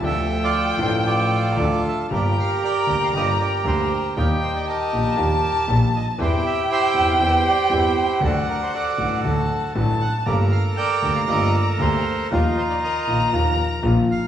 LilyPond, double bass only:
\new Staff \with { instrumentName = "Double bass" } { \clef bass \time 4/4 \key d \minor \tempo 4 = 118 d,4. a,,4. d,8 r8 | \key g \minor g,,8 r4 d,8 g,,8 r8 d,8 r8 | ees,8 r4 bes,,8 ees,8 r8 bes,,8 r8 | e,8 r4 e,8 e,8 r8 e,8 r8 |
d,8 r4 a,,8 d,8 r8 a,,8 r8 | g,,8 r4 d,8 g,,8 r8 d,8 r8 | ees,8 r4 bes,,8 ees,8 r8 bes,,8 r8 | }